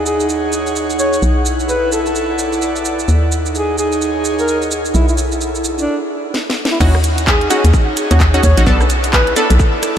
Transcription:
Already playing: D#2 D#4 G#4 C#5 F#5
0.06 G#4, shaker
0.20 shaker
0.29 shaker
0.53 shaker
0.67 shaker
0.76 shaker
0.90 shaker
0.99 C#5, shaker
1.13 shaker
1.22 B1 E4, shaker
1.36 A4
1.46 shaker
1.60 shaker
1.69 B4, shaker
1.92 A4, shaker
2.05 A4 D5, shaker
2.15 shaker
2.39 shaker
2.53 shaker
2.62 shaker
2.76 shaker
2.85 shaker
2.99 shaker
3.08 D#2 D#4, shaker
3.32 shaker
3.39 G#4
3.46 C#5, shaker
3.55 G#4, shaker
3.78 G#4, shaker
3.92 shaker
4.02 shaker
4.25 shaker
4.39 A#4, shaker
4.48 shaker
4.62 shaker
4.71 shaker
4.85 shaker
4.94 B1 E4, shaker
5.04 A4
5.08 E4, shaker
5.18 shaker
5.32 shaker
5.41 shaker
5.55 shaker
5.64 shaker
5.78 D4, shaker
6.34 snare
6.50 snare
6.65 snare
6.71 E4
6.80 D#2 C#4 D#4 E4 F#4, kick, crash, shaker
6.95 cross-stick
7.04 closed hi-hat, shaker
7.18 closed hi-hat, shaker
7.27 G#4, kick, clap, shaker
7.41 closed hi-hat
7.46 C#4 D#4 F#4 G#4 C#5
7.51 closed hi-hat, shaker
7.64 D#2, closed hi-hat, shaker
7.74 kick, shaker
7.97 closed hi-hat, shaker
8.11 D#2 C#4 D#4 F#4, closed hi-hat, shaker
8.20 kick, clap, shaker
8.34 C#4 D#4 F#4, closed hi-hat, shaker
8.43 D#2 C#5, kick, closed hi-hat, shaker
8.57 A#1 C#4 D#4 F#4, closed hi-hat, shaker
8.67 B1 B3 D4 E4 A4, kick, shaker
8.81 cross-stick, shaker
8.90 closed hi-hat, shaker
9.04 A4, closed hi-hat, shaker
9.13 B4, kick, clap, shaker
9.27 D5, closed hi-hat
9.36 B3 D4 A4, closed hi-hat, shaker
9.50 B1 A4, closed hi-hat, shaker
9.60 kick, shaker
9.83 cross-stick, closed hi-hat, shaker

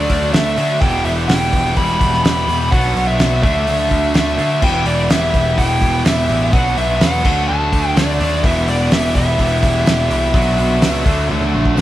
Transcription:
Already playing: D3 F#3 A3 D4 D5
0.09 D2 A3 D4 F#4, kick, open hi-hat
0.33 D2 D3 F#3 A3 D4 F#4 E5, snare, open hi-hat, tambourine
0.57 D3 F#3 A3 D4 F#4, open hi-hat
0.81 E1 E2 B2 E3 G3 B3 E4 G4 G5, kick, open hi-hat
1.04 E1 E3 G3 B3 E4 G4 E5, open hi-hat
1.28 E1 E3 G3 B3 E4 G4 G5, snare, open hi-hat, tambourine
1.52 E1 G3 B3 E4, kick, open hi-hat
1.66 snare
1.75 E1 E2 B2 E3 G3 B3 G4 B5, kick, open hi-hat
2.00 E1 E3 G3 B3 G4, kick, open hi-hat
2.14 snare
2.23 E1 E3 G3 B3 E4 G4 B5, snare, open hi-hat, tambourine
2.47 E2 E3 G3 B3 E4 G4, open hi-hat
2.71 B1 B2 F#3 B3 D4 F#4 F#5, kick, open hi-hat
2.95 B1 F#3 B3 D4 F#4, open hi-hat
3.07 E5
3.19 B1 B2 F#3 B3 D4 F#4, snare, open hi-hat, tambourine
3.43 D2 D3 F#3 A3 D4 F#4 E5, kick, open hi-hat
3.67 D2 D3 A3 D4 F#4, open hi-hat
3.91 D2 A3 D4 F#4, kick, open hi-hat
4.14 D2 D3 F#3 A3 D4 F#4 E5, snare, open hi-hat, tambourine
4.37 D3 F#3 A3 D4 F#4, open hi-hat
4.61 E1 E2 B2 E3 G3 B3 G4 G5, kick, crash
4.65 E4
4.86 E1 E3 G3 B3 E4 G4 D5, open hi-hat
5.10 E1 E3 G3 B3 E4 G4 E5, snare, open hi-hat, tambourine
5.33 E1 G3 B3 E4, kick, open hi-hat
5.57 E1 E2 B2 E3 G3 B3 G4 G5, kick, open hi-hat
5.81 E1 E3 G3 B3 G4, kick, open hi-hat
6.04 E1 E3 G3 B3 E4 G4 E5, snare, open hi-hat, tambourine
6.28 A1 E3 G3 B3 E4 G4, open hi-hat
6.51 B1 B2 F#3 B3 D4 F#4 F#5, kick, open hi-hat
6.76 B1 F#3 B3 D4 F#4 E5, open hi-hat
7.00 E2 B2 F#3 B3 D4 F#4 F#5, snare, open hi-hat, tambourine
7.23 D2 D3 F#3 A3 D4 F#4, kick, crash
7.47 D2 D3 A3 D4 F#4 A5
7.71 D2 A3 D4 F#4, kick, open hi-hat
7.95 D2 D3 F#3 A3 D4 F#4 D5, snare, open hi-hat, tambourine
8.19 D#2 D3 A3 D4 F#4, open hi-hat
8.23 F#3
8.43 E1 E2 B2 E3 G3 B3 E4 G4 E5, kick, open hi-hat
8.67 E1 E3 G3 B3 E4 G4 D5, open hi-hat
8.91 E1 E3 G3 B3 E4 G4 E5, snare, open hi-hat, tambourine
9.14 E1 G3 B3 E4 E5, kick, open hi-hat
9.39 E1 E2 B2 E3 G3 B3 G4, kick, open hi-hat
9.63 E1 E3 G3 B3 G4, kick, open hi-hat
9.86 E1 E3 G3 B3 E4 G4, snare, open hi-hat, tambourine
10.09 C2 E3 G3 B3 E4 G4, open hi-hat
10.33 B1 B2 F#3 B3 D4 F#4, kick, open hi-hat
10.57 B1 F#3 B3 D4 F#4, open hi-hat
10.81 C#2 B2 F#3 B3 D4 F#4, snare, open hi-hat, tambourine
11.04 D2 D3 F#3 A3 D4 F#4, kick, open hi-hat
11.29 D2 D3 F#3 A3 D4 F#4, high tom
11.41 high tom
11.53 A#1 A3 D4 F#4
11.65 kick
11.77 B1 B2 F#3, snare, tambourine

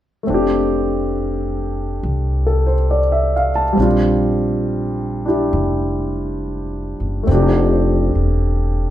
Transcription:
0.23 A3 C4
0.28 F1 D4
0.34 G4
2.03 C2
2.47 A4
2.67 C5
2.91 D5
3.12 E5
3.36 F5
3.55 A5
3.73 G3 C4
3.77 A#1 D4
3.83 F4
5.26 D4 E4 G4
5.53 F1
7.00 F#1
7.23 A3 C4
7.27 F1
7.32 D4 G4
8.15 E1

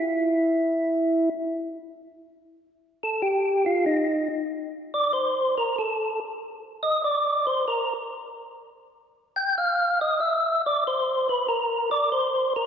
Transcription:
Already playing: E4
3.03 A4
3.22 G4
3.66 F4
3.86 D#4
4.94 D5
5.13 C5
5.58 A#4
5.79 A4
6.83 D#5
7.04 D5
7.47 C5
7.68 A#4
9.36 G5
9.58 F5
10.01 D#5
10.20 E5
10.66 D5
10.87 C5
11.29 B4
11.48 A#4
11.91 D5
12.12 C5
12.56 A#4

